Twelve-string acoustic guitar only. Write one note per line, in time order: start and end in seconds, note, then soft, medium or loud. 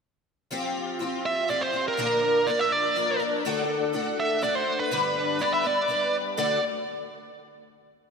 0.51 0.99 F3 medium
0.51 0.99 C4 medium
0.51 1.01 F4 medium
0.51 1.00 G4 medium
0.99 1.47 F3 medium
0.99 1.48 C4 medium
0.99 1.49 F4 medium
0.99 1.50 G4 medium
1.48 1.73 F3 medium
1.48 1.73 C4 medium
1.48 1.72 F4 medium
1.48 1.71 G4 medium
1.73 1.98 C4 soft
1.73 1.98 F4 soft
1.73 1.97 G4 soft
1.97 2.46 A#2 medium
1.97 2.47 D3 medium
1.97 2.45 F3 medium
1.97 2.46 A#3 medium
1.97 2.48 D4 medium
1.97 2.47 A#4 medium
2.47 2.95 F3 medium
2.47 2.95 A#3 medium
2.47 2.97 D4 medium
2.47 2.97 A#4 medium
2.96 3.20 F3 medium
2.96 3.20 A#3 medium
2.96 3.19 D4 medium
2.96 3.18 A#4 medium
3.19 3.45 F3 soft
3.19 3.45 A#3 soft
3.19 3.44 D4 soft
3.19 3.44 A#4 medium
3.45 3.94 D3 medium
3.45 3.92 A3 medium
3.45 3.93 D4 loud
3.45 3.93 F#4 medium
3.45 3.94 A4 loud
3.93 4.40 A3 medium
3.93 4.42 D4 medium
3.93 4.42 F#4 medium
3.93 4.43 A4 medium
4.42 4.91 A3 medium
4.42 4.92 D4 medium
4.42 4.91 F#4 medium
4.42 4.92 A4 medium
4.91 5.41 G2 medium
4.91 5.41 D3 medium
4.91 5.38 G3 medium
4.91 5.39 B3 medium
4.91 5.40 D4 medium
4.91 5.41 B4 medium
5.39 5.64 G3 medium
5.39 5.64 B3 medium
5.39 5.63 D4 medium
5.39 5.62 B4 medium
5.63 5.87 G3 soft
5.63 5.88 B3 soft
5.63 5.88 D4 soft
5.63 5.89 B4 soft
5.88 6.37 G3 medium
5.88 6.38 B3 medium
5.88 6.37 D4 medium
5.88 6.39 B4 medium
6.37 6.58 D3 medium
6.37 6.58 A3 medium
6.37 6.58 D4 medium
6.37 6.58 F#4 medium
6.37 6.59 A4 medium